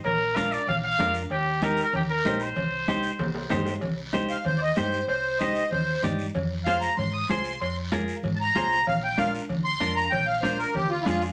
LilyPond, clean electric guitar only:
\new Staff \with { instrumentName = "Clean electric guitar" } { \time 4/4 \key c \minor \tempo 4 = 190 r4 <d' f' bes'>8 r4. <d' f' bes'>8 r8 | r4 <ees' g' bes'>8 r4. <ees' g' c''>8 r8 | r4 <ees' g' c''>8 r4. <ees' g' c''>8 r8 | r4 <ees' g' c''>8 r4. <ees' g' c''>8 r8 |
r4 <ees' g' c''>8 r4. <ees' g' d''>8 r8 | r4 <f' aes' c''>8 r4. <f' aes' c''>8 r8 | r4 <f' aes' bes'>8 r4. <f' aes' c''>8 r8 | r4 <d' f' bes'>8 r4. <d' f' bes'>8 r8 |
r4 <d' f' bes'>8 r4. <d' f' aes'>8 r8 | }